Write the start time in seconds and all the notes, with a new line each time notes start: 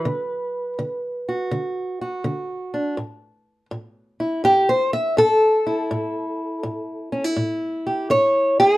Already playing: B4
0.05 D3
0.79 D3
1.29 F#4
1.51 D3
2.01 F#4
2.24 D3
2.74 D4
2.97 A2
3.71 A2
4.20 E4
4.44 A2 G4
4.69 C5
4.93 E5
5.17 A2 A4
5.67 E4
5.91 A2
6.63 A2
7.12 C#4
7.24 E4
7.36 A2
7.87 G4
8.10 A2 C#5
8.60 E4 G#4